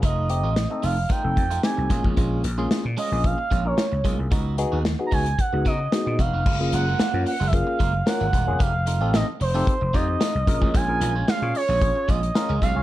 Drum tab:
CC |----------------|----------------|----------------|x---------------|
HH |x-x-x-o-x-xxx-x-|x-x-x-o-x-x-x-x-|x-x-x-oxx-x-x-x-|--x-x-o-x-x-x-x-|
SD |----o-------o---|----o-------o---|----o-------o---|----o-------o---|
BD |o-------o-o---oo|o-------o-o---o-|o-----o-o-o---o-|o-------o-o---o-|

CC |----------------|----------------|
HH |x-x-x-o-x-x-x-x-|x-x-x-o-x-xxx-x-|
SD |----o-------o---|----o-------o---|
BD |o-------o-o---oo|o-------o-o---o-|